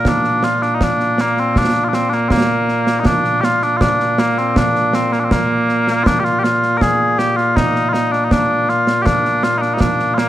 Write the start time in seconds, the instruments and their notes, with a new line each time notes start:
Already playing: bagpipes A#2 A#3
0.05 bagpipes D4, concert bass drum, snare
0.24 snare
0.43 bagpipes F4, snare
0.62 bagpipes D4, snare
0.75 bagpipes D#4
0.81 bagpipes D4, concert bass drum, snare
1.00 snare
1.18 bagpipes A#3, snare
1.37 bagpipes C4, snare
1.56 bagpipes D4, concert bass drum, snare
1.75 snare
1.84 bagpipes F4
1.89 bagpipes D4
1.93 bagpipes C4, snare
2.09 bagpipes D4, snare
2.14 bagpipes A#3
2.29 bagpipes A#3 C4, concert bass drum, snare
2.68 snare
2.87 snare
3.00 bagpipes D#4
3.05 bagpipes D4, concert bass drum, snare
3.24 snare
3.41 bagpipes F4 G4, snare
3.62 bagpipes D4, snare
3.77 bagpipes F4, concert bass drum, snare
3.81 bagpipes D4
4.00 snare
4.18 bagpipes A#3, snare
4.37 bagpipes C4, snare
4.56 bagpipes D4, concert bass drum, snare
4.75 snare
4.93 bagpipes C4, snare
5.13 bagpipes A#3, snare
5.20 bagpipes D4
5.24 bagpipes C4
5.31 bagpipes A#3, concert bass drum, snare
5.69 snare
5.88 snare
6.04 bagpipes D4 F4, concert bass drum, snare
6.20 bagpipes G4
6.25 bagpipes F4, snare
6.39 bagpipes G4
6.44 bagpipes F4, snare
6.63 snare
6.77 bagpipes A#4
6.81 bagpipes G#4, concert bass drum, snare
7.18 bagpipes G4, snare
7.37 bagpipes F4, snare
7.56 bagpipes D#4, concert bass drum, snare
7.76 snare
7.89 bagpipes D#4 F4
7.94 snare
8.12 bagpipes D4, snare
8.24 bagpipes D#4
8.31 bagpipes D4, concert bass drum, snare
8.69 bagpipes F4, snare
8.87 snare
9.02 bagpipes D4 G4
9.06 concert bass drum, snare
9.25 snare
9.43 bagpipes F4, snare
9.58 bagpipes D4 D#4
9.62 snare
9.74 bagpipes D#4
9.80 bagpipes D4, concert bass drum, snare
9.99 snare
10.14 bagpipes A#3 F4, snare